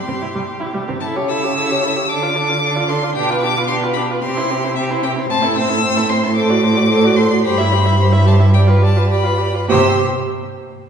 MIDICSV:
0, 0, Header, 1, 5, 480
1, 0, Start_track
1, 0, Key_signature, 0, "major"
1, 0, Tempo, 536673
1, 913, Time_signature, 4, 2, 24, 8
1, 7152, Tempo, 564440
1, 9617, End_track
2, 0, Start_track
2, 0, Title_t, "Violin"
2, 0, Program_c, 0, 40
2, 0, Note_on_c, 0, 84, 97
2, 415, Note_off_c, 0, 84, 0
2, 898, Note_on_c, 0, 81, 99
2, 970, Note_off_c, 0, 81, 0
2, 1149, Note_on_c, 0, 88, 126
2, 1868, Note_on_c, 0, 86, 127
2, 1882, Note_off_c, 0, 88, 0
2, 2586, Note_on_c, 0, 84, 114
2, 2599, Note_off_c, 0, 86, 0
2, 2817, Note_off_c, 0, 84, 0
2, 2822, Note_on_c, 0, 79, 118
2, 3052, Note_off_c, 0, 79, 0
2, 3058, Note_on_c, 0, 86, 123
2, 3282, Note_off_c, 0, 86, 0
2, 3287, Note_on_c, 0, 84, 114
2, 3358, Note_off_c, 0, 84, 0
2, 3521, Note_on_c, 0, 83, 113
2, 3592, Note_off_c, 0, 83, 0
2, 3769, Note_on_c, 0, 84, 124
2, 4248, Note_off_c, 0, 84, 0
2, 4255, Note_on_c, 0, 76, 111
2, 4327, Note_off_c, 0, 76, 0
2, 4501, Note_on_c, 0, 79, 112
2, 4573, Note_off_c, 0, 79, 0
2, 4738, Note_on_c, 0, 81, 127
2, 4972, Note_off_c, 0, 81, 0
2, 4979, Note_on_c, 0, 88, 127
2, 5449, Note_on_c, 0, 84, 114
2, 5462, Note_off_c, 0, 88, 0
2, 5685, Note_off_c, 0, 84, 0
2, 5691, Note_on_c, 0, 86, 127
2, 6411, Note_on_c, 0, 84, 124
2, 6425, Note_off_c, 0, 86, 0
2, 6657, Note_off_c, 0, 84, 0
2, 6663, Note_on_c, 0, 83, 124
2, 7369, Note_off_c, 0, 83, 0
2, 7386, Note_on_c, 0, 81, 98
2, 7454, Note_off_c, 0, 81, 0
2, 7614, Note_on_c, 0, 79, 110
2, 7682, Note_off_c, 0, 79, 0
2, 7861, Note_on_c, 0, 81, 105
2, 8093, Note_off_c, 0, 81, 0
2, 8098, Note_on_c, 0, 83, 101
2, 8583, Note_off_c, 0, 83, 0
2, 8595, Note_on_c, 0, 88, 105
2, 8861, Note_off_c, 0, 88, 0
2, 9617, End_track
3, 0, Start_track
3, 0, Title_t, "Violin"
3, 0, Program_c, 1, 40
3, 0, Note_on_c, 1, 67, 56
3, 880, Note_off_c, 1, 67, 0
3, 908, Note_on_c, 1, 69, 68
3, 1034, Note_on_c, 1, 73, 64
3, 1048, Note_off_c, 1, 69, 0
3, 1148, Note_on_c, 1, 69, 63
3, 1162, Note_off_c, 1, 73, 0
3, 1292, Note_on_c, 1, 73, 67
3, 1305, Note_off_c, 1, 69, 0
3, 1395, Note_off_c, 1, 73, 0
3, 1401, Note_on_c, 1, 69, 71
3, 1532, Note_on_c, 1, 73, 68
3, 1545, Note_off_c, 1, 69, 0
3, 1638, Note_on_c, 1, 69, 64
3, 1652, Note_off_c, 1, 73, 0
3, 1751, Note_on_c, 1, 73, 63
3, 1765, Note_off_c, 1, 69, 0
3, 1867, Note_off_c, 1, 73, 0
3, 1873, Note_on_c, 1, 69, 72
3, 1984, Note_on_c, 1, 74, 69
3, 1998, Note_off_c, 1, 69, 0
3, 2105, Note_on_c, 1, 69, 71
3, 2118, Note_off_c, 1, 74, 0
3, 2232, Note_on_c, 1, 74, 64
3, 2245, Note_off_c, 1, 69, 0
3, 2330, Note_off_c, 1, 74, 0
3, 2335, Note_on_c, 1, 69, 76
3, 2461, Note_on_c, 1, 74, 67
3, 2474, Note_off_c, 1, 69, 0
3, 2572, Note_on_c, 1, 69, 73
3, 2585, Note_off_c, 1, 74, 0
3, 2701, Note_on_c, 1, 74, 74
3, 2715, Note_off_c, 1, 69, 0
3, 2820, Note_off_c, 1, 74, 0
3, 2825, Note_on_c, 1, 67, 79
3, 2948, Note_on_c, 1, 71, 72
3, 2962, Note_off_c, 1, 67, 0
3, 3072, Note_on_c, 1, 67, 78
3, 3085, Note_off_c, 1, 71, 0
3, 3196, Note_on_c, 1, 71, 71
3, 3210, Note_off_c, 1, 67, 0
3, 3293, Note_off_c, 1, 71, 0
3, 3299, Note_on_c, 1, 67, 78
3, 3424, Note_on_c, 1, 71, 72
3, 3437, Note_off_c, 1, 67, 0
3, 3541, Note_on_c, 1, 67, 71
3, 3555, Note_off_c, 1, 71, 0
3, 3675, Note_on_c, 1, 71, 67
3, 3689, Note_off_c, 1, 67, 0
3, 3783, Note_off_c, 1, 71, 0
3, 3788, Note_on_c, 1, 67, 77
3, 3913, Note_on_c, 1, 72, 78
3, 3927, Note_off_c, 1, 67, 0
3, 4025, Note_on_c, 1, 67, 73
3, 4039, Note_off_c, 1, 72, 0
3, 4159, Note_on_c, 1, 72, 69
3, 4173, Note_off_c, 1, 67, 0
3, 4271, Note_off_c, 1, 72, 0
3, 4276, Note_on_c, 1, 67, 83
3, 4388, Note_on_c, 1, 72, 74
3, 4401, Note_off_c, 1, 67, 0
3, 4508, Note_on_c, 1, 67, 72
3, 4521, Note_off_c, 1, 72, 0
3, 4637, Note_on_c, 1, 72, 76
3, 4650, Note_off_c, 1, 67, 0
3, 4741, Note_off_c, 1, 72, 0
3, 4746, Note_on_c, 1, 72, 83
3, 4866, Note_on_c, 1, 69, 73
3, 4880, Note_off_c, 1, 72, 0
3, 4988, Note_on_c, 1, 72, 75
3, 5001, Note_off_c, 1, 69, 0
3, 5086, Note_on_c, 1, 69, 74
3, 5099, Note_off_c, 1, 72, 0
3, 5206, Note_off_c, 1, 69, 0
3, 5211, Note_on_c, 1, 72, 82
3, 5337, Note_on_c, 1, 69, 74
3, 5351, Note_off_c, 1, 72, 0
3, 5453, Note_on_c, 1, 72, 76
3, 5467, Note_off_c, 1, 69, 0
3, 5575, Note_on_c, 1, 69, 69
3, 5589, Note_off_c, 1, 72, 0
3, 5681, Note_off_c, 1, 69, 0
3, 5687, Note_on_c, 1, 72, 77
3, 5809, Note_on_c, 1, 74, 72
3, 5823, Note_off_c, 1, 72, 0
3, 5928, Note_on_c, 1, 72, 79
3, 5941, Note_off_c, 1, 74, 0
3, 6046, Note_on_c, 1, 74, 70
3, 6060, Note_off_c, 1, 72, 0
3, 6158, Note_off_c, 1, 74, 0
3, 6164, Note_on_c, 1, 72, 81
3, 6294, Note_on_c, 1, 74, 77
3, 6307, Note_off_c, 1, 72, 0
3, 6410, Note_on_c, 1, 72, 73
3, 6424, Note_off_c, 1, 74, 0
3, 6532, Note_on_c, 1, 74, 77
3, 6546, Note_off_c, 1, 72, 0
3, 6643, Note_off_c, 1, 74, 0
3, 6648, Note_on_c, 1, 72, 85
3, 6773, Note_on_c, 1, 76, 72
3, 6786, Note_off_c, 1, 72, 0
3, 6898, Note_on_c, 1, 72, 75
3, 6911, Note_off_c, 1, 76, 0
3, 7027, Note_on_c, 1, 76, 73
3, 7041, Note_off_c, 1, 72, 0
3, 7138, Note_off_c, 1, 76, 0
3, 7144, Note_on_c, 1, 72, 73
3, 7262, Note_on_c, 1, 76, 71
3, 7274, Note_off_c, 1, 72, 0
3, 7389, Note_on_c, 1, 72, 68
3, 7402, Note_off_c, 1, 76, 0
3, 7497, Note_on_c, 1, 76, 65
3, 7510, Note_off_c, 1, 72, 0
3, 7615, Note_off_c, 1, 76, 0
3, 7620, Note_on_c, 1, 74, 69
3, 7730, Note_on_c, 1, 71, 69
3, 7743, Note_off_c, 1, 74, 0
3, 7856, Note_on_c, 1, 74, 71
3, 7868, Note_off_c, 1, 71, 0
3, 7984, Note_on_c, 1, 71, 64
3, 7997, Note_off_c, 1, 74, 0
3, 8091, Note_off_c, 1, 71, 0
3, 8096, Note_on_c, 1, 74, 69
3, 8225, Note_on_c, 1, 71, 65
3, 8238, Note_off_c, 1, 74, 0
3, 8351, Note_on_c, 1, 74, 63
3, 8364, Note_off_c, 1, 71, 0
3, 8476, Note_on_c, 1, 71, 62
3, 8488, Note_off_c, 1, 74, 0
3, 8591, Note_off_c, 1, 71, 0
3, 8596, Note_on_c, 1, 72, 94
3, 8862, Note_off_c, 1, 72, 0
3, 9617, End_track
4, 0, Start_track
4, 0, Title_t, "Viola"
4, 0, Program_c, 2, 41
4, 70, Note_on_c, 2, 60, 61
4, 118, Note_off_c, 2, 60, 0
4, 192, Note_on_c, 2, 64, 58
4, 239, Note_off_c, 2, 64, 0
4, 313, Note_on_c, 2, 55, 88
4, 360, Note_off_c, 2, 55, 0
4, 538, Note_on_c, 2, 64, 73
4, 588, Note_off_c, 2, 64, 0
4, 657, Note_on_c, 2, 55, 83
4, 708, Note_off_c, 2, 55, 0
4, 789, Note_on_c, 2, 60, 71
4, 838, Note_off_c, 2, 60, 0
4, 910, Note_on_c, 2, 64, 71
4, 1042, Note_on_c, 2, 67, 65
4, 1055, Note_off_c, 2, 64, 0
4, 1164, Note_on_c, 2, 64, 73
4, 1177, Note_off_c, 2, 67, 0
4, 1287, Note_on_c, 2, 67, 64
4, 1300, Note_off_c, 2, 64, 0
4, 1403, Note_off_c, 2, 67, 0
4, 1408, Note_on_c, 2, 64, 72
4, 1522, Note_on_c, 2, 67, 65
4, 1535, Note_off_c, 2, 64, 0
4, 1632, Note_on_c, 2, 64, 69
4, 1645, Note_off_c, 2, 67, 0
4, 1756, Note_on_c, 2, 67, 67
4, 1770, Note_off_c, 2, 64, 0
4, 1869, Note_off_c, 2, 67, 0
4, 1874, Note_on_c, 2, 62, 74
4, 1993, Note_on_c, 2, 65, 67
4, 2006, Note_off_c, 2, 62, 0
4, 2109, Note_on_c, 2, 62, 72
4, 2122, Note_off_c, 2, 65, 0
4, 2228, Note_on_c, 2, 65, 69
4, 2242, Note_off_c, 2, 62, 0
4, 2338, Note_off_c, 2, 65, 0
4, 2344, Note_on_c, 2, 62, 68
4, 2472, Note_on_c, 2, 65, 74
4, 2485, Note_off_c, 2, 62, 0
4, 2598, Note_on_c, 2, 62, 71
4, 2611, Note_off_c, 2, 65, 0
4, 2718, Note_on_c, 2, 65, 69
4, 2731, Note_off_c, 2, 62, 0
4, 2820, Note_off_c, 2, 65, 0
4, 2825, Note_on_c, 2, 62, 84
4, 2950, Note_on_c, 2, 65, 73
4, 2963, Note_off_c, 2, 62, 0
4, 3076, Note_on_c, 2, 62, 77
4, 3090, Note_off_c, 2, 65, 0
4, 3196, Note_on_c, 2, 65, 72
4, 3210, Note_off_c, 2, 62, 0
4, 3310, Note_off_c, 2, 65, 0
4, 3315, Note_on_c, 2, 62, 72
4, 3427, Note_on_c, 2, 65, 66
4, 3441, Note_off_c, 2, 62, 0
4, 3548, Note_on_c, 2, 62, 71
4, 3561, Note_off_c, 2, 65, 0
4, 3669, Note_on_c, 2, 65, 73
4, 3683, Note_off_c, 2, 62, 0
4, 3785, Note_off_c, 2, 65, 0
4, 3791, Note_on_c, 2, 60, 87
4, 3909, Note_on_c, 2, 64, 74
4, 3922, Note_off_c, 2, 60, 0
4, 4028, Note_on_c, 2, 60, 76
4, 4041, Note_off_c, 2, 64, 0
4, 4150, Note_on_c, 2, 64, 74
4, 4163, Note_off_c, 2, 60, 0
4, 4265, Note_off_c, 2, 64, 0
4, 4270, Note_on_c, 2, 60, 76
4, 4384, Note_on_c, 2, 64, 80
4, 4397, Note_off_c, 2, 60, 0
4, 4492, Note_on_c, 2, 60, 76
4, 4505, Note_off_c, 2, 64, 0
4, 4614, Note_on_c, 2, 64, 73
4, 4628, Note_off_c, 2, 60, 0
4, 4732, Note_off_c, 2, 64, 0
4, 4738, Note_on_c, 2, 60, 86
4, 4850, Note_on_c, 2, 64, 77
4, 4863, Note_off_c, 2, 60, 0
4, 4973, Note_on_c, 2, 60, 79
4, 4986, Note_off_c, 2, 64, 0
4, 5095, Note_on_c, 2, 64, 71
4, 5109, Note_off_c, 2, 60, 0
4, 5211, Note_off_c, 2, 64, 0
4, 5217, Note_on_c, 2, 60, 79
4, 5337, Note_on_c, 2, 64, 70
4, 5350, Note_off_c, 2, 60, 0
4, 5452, Note_on_c, 2, 60, 75
4, 5466, Note_off_c, 2, 64, 0
4, 5575, Note_on_c, 2, 64, 73
4, 5589, Note_off_c, 2, 60, 0
4, 5688, Note_off_c, 2, 64, 0
4, 5693, Note_on_c, 2, 69, 86
4, 5818, Note_on_c, 2, 66, 74
4, 5832, Note_off_c, 2, 69, 0
4, 5937, Note_on_c, 2, 69, 80
4, 5950, Note_off_c, 2, 66, 0
4, 6053, Note_on_c, 2, 66, 70
4, 6066, Note_off_c, 2, 69, 0
4, 6163, Note_off_c, 2, 66, 0
4, 6168, Note_on_c, 2, 69, 78
4, 6305, Note_on_c, 2, 66, 77
4, 6319, Note_off_c, 2, 69, 0
4, 6425, Note_on_c, 2, 69, 72
4, 6438, Note_off_c, 2, 66, 0
4, 6546, Note_on_c, 2, 66, 72
4, 6559, Note_off_c, 2, 69, 0
4, 6666, Note_off_c, 2, 66, 0
4, 6670, Note_on_c, 2, 67, 81
4, 6797, Note_on_c, 2, 64, 74
4, 6810, Note_off_c, 2, 67, 0
4, 6915, Note_on_c, 2, 67, 75
4, 6928, Note_off_c, 2, 64, 0
4, 7024, Note_on_c, 2, 64, 69
4, 7038, Note_off_c, 2, 67, 0
4, 7136, Note_off_c, 2, 64, 0
4, 7142, Note_on_c, 2, 67, 69
4, 7258, Note_on_c, 2, 64, 66
4, 7270, Note_off_c, 2, 67, 0
4, 7369, Note_on_c, 2, 67, 71
4, 7382, Note_off_c, 2, 64, 0
4, 7491, Note_on_c, 2, 64, 69
4, 7503, Note_off_c, 2, 67, 0
4, 7602, Note_off_c, 2, 64, 0
4, 7607, Note_on_c, 2, 67, 74
4, 7725, Note_on_c, 2, 65, 67
4, 7738, Note_off_c, 2, 67, 0
4, 7850, Note_on_c, 2, 67, 68
4, 7863, Note_off_c, 2, 65, 0
4, 7971, Note_on_c, 2, 65, 63
4, 7984, Note_off_c, 2, 67, 0
4, 8083, Note_off_c, 2, 65, 0
4, 8089, Note_on_c, 2, 67, 66
4, 8209, Note_on_c, 2, 65, 71
4, 8222, Note_off_c, 2, 67, 0
4, 8330, Note_on_c, 2, 67, 68
4, 8343, Note_off_c, 2, 65, 0
4, 8461, Note_on_c, 2, 65, 62
4, 8473, Note_off_c, 2, 67, 0
4, 8577, Note_off_c, 2, 65, 0
4, 8582, Note_on_c, 2, 67, 100
4, 8854, Note_off_c, 2, 67, 0
4, 9617, End_track
5, 0, Start_track
5, 0, Title_t, "Cello"
5, 0, Program_c, 3, 42
5, 70, Note_on_c, 3, 48, 59
5, 118, Note_off_c, 3, 48, 0
5, 193, Note_on_c, 3, 48, 61
5, 240, Note_off_c, 3, 48, 0
5, 316, Note_on_c, 3, 48, 76
5, 362, Note_off_c, 3, 48, 0
5, 555, Note_on_c, 3, 48, 60
5, 602, Note_off_c, 3, 48, 0
5, 675, Note_on_c, 3, 48, 84
5, 723, Note_off_c, 3, 48, 0
5, 799, Note_on_c, 3, 48, 67
5, 846, Note_off_c, 3, 48, 0
5, 926, Note_on_c, 3, 49, 74
5, 1851, Note_off_c, 3, 49, 0
5, 1879, Note_on_c, 3, 50, 82
5, 2816, Note_off_c, 3, 50, 0
5, 2834, Note_on_c, 3, 47, 84
5, 3768, Note_off_c, 3, 47, 0
5, 3785, Note_on_c, 3, 48, 90
5, 4742, Note_on_c, 3, 45, 97
5, 4755, Note_off_c, 3, 48, 0
5, 6663, Note_on_c, 3, 43, 97
5, 6676, Note_off_c, 3, 45, 0
5, 8412, Note_off_c, 3, 43, 0
5, 8591, Note_on_c, 3, 48, 105
5, 8859, Note_off_c, 3, 48, 0
5, 9617, End_track
0, 0, End_of_file